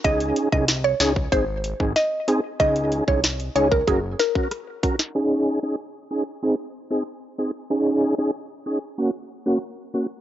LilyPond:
<<
  \new Staff \with { instrumentName = "Synth pluck" } { \time 4/4 \key aes \mixolydian \tempo 4 = 94 ees''16 r8 ees''16 r16 des''16 des''16 r16 c''8. r16 ees''8. r16 | ees''16 r8 des''16 r8 des''16 bes'16 aes'16 r16 bes'16 r4 r16 | r1 | r1 | }
  \new Staff \with { instrumentName = "Tonewheel organ" } { \time 4/4 \key aes \mixolydian <des' ees' aes'>8. <des' ees' aes'>16 r8 <des' ees' aes'>16 r16 <c' ees' aes'>16 r8 <c' ees' aes'>16 r8 <c' ees' aes'>16 r16 | <des' ees' aes'>8. <des' ees' aes'>16 r8 <des' ees' aes'>16 r16 <des' ges' bes'>16 r8 <des' ges' bes'>16 r8 <des' ges' bes'>16 r16 | <des' ees' aes'>8. <des' ees' aes'>16 r8 <des' ees' aes'>16 r16 <c' ees' aes'>16 r8 <c' ees' aes'>16 r8 <c' ees' aes'>16 r16 | <des' ees' aes'>8. <des' ees' aes'>16 r8 <des' ees' aes'>16 r16 <bes des' ges'>16 r8 <bes des' ges'>16 r8 <bes des' ges'>16 r16 | }
  \new Staff \with { instrumentName = "Analog synth bass" } { \clef bass \time 4/4 \key aes \mixolydian des,8 r16 c,8. des,8 aes,,8. aes,,16 r4 | des,8. c,8. des,8 ges,,8 r4. | r1 | r1 | }
  \new DrumStaff \with { instrumentName = "Drums" } \drummode { \time 4/4 <hh bd>16 hh16 hh16 bd16 <hh sn>8 <hh sn>16 bd16 <hh bd>8 hh16 bd16 <hh sn>8 hh8 | <hh bd>16 hh16 hh16 bd16 <hh sn>16 hh16 hh16 bd16 <hh bd>8 <hh sn>16 bd16 <hh ss>8 <hh bd>16 sn16 | r4 r4 r4 r4 | r4 r4 r4 r4 | }
>>